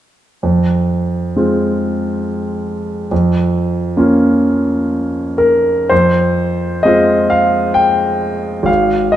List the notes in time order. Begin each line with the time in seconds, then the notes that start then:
0.43 F2
1.36 G#3 C4 F4
3.11 F2
3.97 A#3 C#4 F4
5.38 A#4
5.89 F2 C5
6.83 G#3 C4 F4 D#5
7.30 F5
7.74 G5
8.63 G#1 F5
9.12 D#5